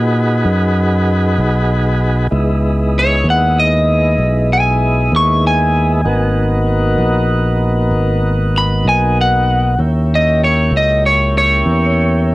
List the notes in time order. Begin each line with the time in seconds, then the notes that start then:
Already playing: A#2 D#4 F#4 G#4 B4
0.45 F#2
1.38 B1
2.31 C#2 G#3 B3 D#4 E4
2.99 C#5
3.24 D#2
3.30 F#5
3.59 D#5
4.18 B1
4.53 G#5
5.12 D#2
5.16 C#6
5.47 G#5
6.05 G#1 A#3 B3 D#4 F#4
6.98 A#1
7.91 G#1
8.58 B5
8.85 B1 G#5
9.21 F#5
9.79 D#2 A#3 C#4 E4 G4
10.15 D#5
10.44 C#5
10.71 C#2
10.77 D#5
11.06 C#5
11.38 C#5
11.66 E2